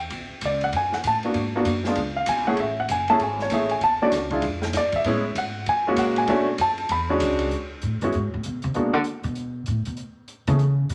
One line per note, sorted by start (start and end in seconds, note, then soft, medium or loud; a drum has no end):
0.10 0.29 B1 medium
0.10 kick soft
0.10 ride medium
0.30 muted upright bass stroke soft
0.41 0.72 C#2 medium
0.41 kick soft
0.41 hi-hat pedal medium
0.41 ride medium
0.45 0.63 D5 medium
0.61 0.74 F#5 loud
0.61 ride soft
0.73 1.03 F#2 medium
0.73 0.94 G#5 loud
0.73 kick soft
0.73 ride medium
0.92 1.05 F#5 medium
0.92 snare soft
1.03 1.34 A2 medium
1.03 1.18 A5 medium
1.03 kick soft
1.03 hi-hat pedal medium
1.03 ride medium
1.23 1.35 A#3 medium
1.23 1.35 B3 medium
1.23 1.35 D4 medium
1.23 1.35 F#4 medium
1.23 ride medium
1.34 1.64 G#2 medium
1.34 kick soft
1.34 ride medium
1.55 1.66 A#3 medium
1.55 1.66 B3 medium
1.55 1.66 D4 medium
1.55 1.66 F#4 medium
1.65 1.95 F#2 loud
1.65 kick soft
1.65 hi-hat pedal medium
1.65 ride medium
1.84 1.96 G#3 medium
1.84 1.97 B3 medium
1.84 1.97 D4 medium
1.84 1.97 F4 medium
1.84 snare soft
1.95 2.26 C#2 medium
1.95 kick soft
1.95 ride medium
2.16 2.28 F5 medium
2.26 2.57 B1 medium
2.26 2.47 G#5 loud
2.26 kick soft
2.26 hi-hat pedal medium
2.26 ride medium
2.47 2.58 A3 medium
2.47 2.58 C#4 medium
2.47 2.58 E4 medium
2.47 2.59 G#4 medium
2.47 2.58 F#5 loud
2.57 2.88 A1 medium
2.57 2.78 E5 medium
2.57 kick soft
2.57 ride medium
2.80 2.90 F#5 loud
2.88 3.19 F#1 loud
2.88 3.09 G#5 medium
2.88 kick soft
2.88 hi-hat pedal medium
2.88 ride medium
3.08 3.20 A3 medium
3.08 3.20 C#4 medium
3.08 3.20 E4 medium
3.08 3.20 G#4 medium
3.08 3.21 A5 loud
3.08 ride soft
3.19 3.50 G#1 medium
3.19 kick soft
3.19 ride medium
3.24 3.41 G#5 medium
3.39 3.52 C#5 medium
3.39 snare soft
3.50 3.80 A1 medium
3.50 3.69 A3 medium
3.50 3.69 C#4 medium
3.50 3.69 E4 medium
3.50 3.70 G#4 medium
3.50 3.71 E5 medium
3.50 kick soft
3.50 hi-hat pedal medium
3.50 ride medium
3.69 3.82 G#5 medium
3.69 ride medium
3.81 3.99 B1 medium
3.81 4.02 A5 loud
3.81 kick soft
3.81 ride medium
4.01 4.12 A3 medium
4.01 4.12 C#4 medium
4.01 4.12 D4 medium
4.01 4.13 F#4 medium
4.01 4.09 D5 loud
4.01 muted upright bass stroke soft
4.12 4.41 C#2 loud
4.12 kick soft
4.12 snare soft
4.12 hi-hat pedal medium
4.12 ride medium
4.30 4.42 G#3 medium
4.30 4.42 D4 medium
4.30 4.43 E4 medium
4.30 4.43 F4 medium
4.30 kick medium
4.30 ride soft
4.42 4.73 F2 medium
4.42 kick soft
4.42 ride medium
4.62 snare medium
4.73 5.04 G2 medium
4.73 kick soft
4.73 snare soft
4.73 hi-hat pedal medium
4.73 ride medium
4.77 4.94 D5 medium
4.92 5.34 E5 medium
4.92 kick medium
4.92 ride medium
5.04 5.35 A2 medium
5.04 5.23 G#3 medium
5.04 5.23 B3 medium
5.04 5.23 C#4 medium
5.04 5.23 E4 medium
5.04 kick soft
5.04 ride medium
5.35 5.65 G#2 medium
5.35 5.66 F#5 loud
5.35 kick soft
5.35 hi-hat pedal medium
5.35 ride medium
5.66 5.96 F#2 medium
5.66 5.87 G#5 loud
5.66 kick soft
5.66 ride medium
5.87 6.27 G#3 medium
5.87 6.27 A#3 medium
5.87 6.27 C#4 medium
5.87 6.27 F#4 medium
5.96 6.27 A#2 loud
5.96 6.17 F#5 loud
5.96 kick soft
5.96 hi-hat pedal medium
5.96 ride medium
6.16 6.57 G#5 loud
6.16 ride medium
6.27 6.58 B2 medium
6.27 6.46 A3 medium
6.27 6.46 C#4 medium
6.27 6.46 D4 medium
6.27 6.46 F#4 medium
6.27 kick soft
6.27 ride medium
6.58 6.89 F#2 medium
6.58 6.89 A5 loud
6.58 kick soft
6.58 hi-hat pedal medium
6.58 ride medium
6.78 ride soft
6.89 7.19 E2 medium
6.89 7.03 B5 medium
6.89 kick soft
6.89 ride medium
7.09 7.49 G#3 medium
7.09 7.50 C#4 medium
7.09 7.50 D4 medium
7.09 7.50 F#4 medium
7.20 7.50 C#2 loud
7.20 kick soft
7.20 hi-hat pedal medium
7.20 ride medium
7.39 ride medium
7.51 closed hi-hat soft
7.82 8.01 A2 medium
7.82 closed hi-hat soft
8.01 8.13 G2 medium
8.01 8.12 G#3 medium
8.01 8.13 B3 soft
8.01 8.13 C#4 medium
8.01 8.13 E4 medium
8.01 8.13 F#4 medium
8.01 closed hi-hat soft
8.12 8.33 G#2 medium
8.12 closed hi-hat soft
8.34 8.44 A2 medium
8.43 8.63 B2 medium
8.43 closed hi-hat medium
8.62 8.75 C3 medium
8.62 closed hi-hat soft
8.74 8.93 B2 medium
8.74 8.92 G#3 medium
8.74 8.92 A#3 medium
8.74 8.92 B3 medium
8.74 8.93 D4 medium
8.74 8.93 F#4 medium
8.74 closed hi-hat soft
8.93 9.01 D3 loud
9.04 closed hi-hat soft
9.23 9.64 B2 medium
9.23 closed hi-hat soft
9.35 closed hi-hat soft
9.66 9.86 A2 medium
9.66 closed hi-hat soft
9.85 9.98 B2 medium
9.85 closed hi-hat soft
9.97 closed hi-hat soft
10.28 closed hi-hat soft
10.47 10.87 C#3 loud
10.47 10.58 E3 medium
10.47 10.59 A3 soft
10.47 10.58 B3 soft
10.47 10.59 C#4 soft
10.47 10.59 G#4 medium
10.47 closed hi-hat soft
10.59 closed hi-hat soft
10.89 10.95 B2 medium
10.89 closed hi-hat medium